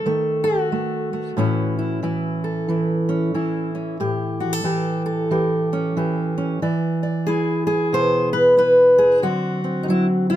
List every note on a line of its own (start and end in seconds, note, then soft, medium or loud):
0.00 1.11 A4 loud
0.06 1.34 D#3 medium
0.06 0.72 A3 soft
0.44 2.42 F#4 medium
0.72 1.13 A3 medium
1.13 1.38 A3 soft
1.37 3.96 A2 medium
1.37 2.02 E3 medium
1.37 3.08 C#4 medium
1.37 1.78 E4 soft
1.79 2.03 E4 soft
2.03 2.69 E3 medium
2.03 2.69 E4 soft
2.44 3.97 A4 soft
2.69 3.34 E3 medium
2.69 3.34 E4 soft
3.09 3.74 C#4 soft
3.34 4.64 E3 medium
3.34 4.00 E4 soft
3.75 3.97 C#4 soft
4.00 6.58 A2 medium
4.00 4.64 G4 medium
4.40 4.53 F#4 medium
4.53 5.05 A4 medium
4.64 5.29 E3 medium
4.64 5.30 G4 medium
5.06 6.58 A4 medium
5.31 5.95 E3 medium
5.31 5.96 G4 medium
5.73 6.36 C#4 medium
5.97 6.61 E3 medium
5.97 6.59 G4 medium
6.38 6.59 C#4 medium
6.62 9.22 E3 medium
6.62 7.03 D5 soft
7.03 7.94 D5 soft
7.27 8.56 E4 medium
7.27 7.66 G#4 medium
7.67 8.57 G#4 medium
7.93 9.20 B2 medium
7.93 8.33 C5 loud
8.33 8.57 B4 medium
8.57 9.20 E4 medium
8.57 9.23 B4 loud
8.98 9.23 G#4 medium
9.22 10.36 D3 medium
9.22 9.87 F#3 medium
9.22 9.63 C4 soft
9.22 10.28 F#4 medium
9.64 10.36 C4 soft
9.83 9.88 D#4 medium
9.88 10.36 F#3 medium
9.88 10.06 E4 medium
10.30 10.36 F#4 medium